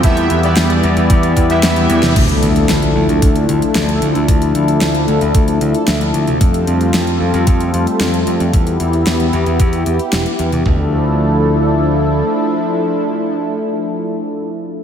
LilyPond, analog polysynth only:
\new Staff \with { instrumentName = "Analog polysynth" } { \time 4/4 \key d \dorian \tempo 4 = 113 <e b e' g' e''>8. <e b e' g' d''>2 <e b e' g' e''>16 <e b e' g' e''>4 | r1 | r1 | r1 |
r1 | r1 | r1 | }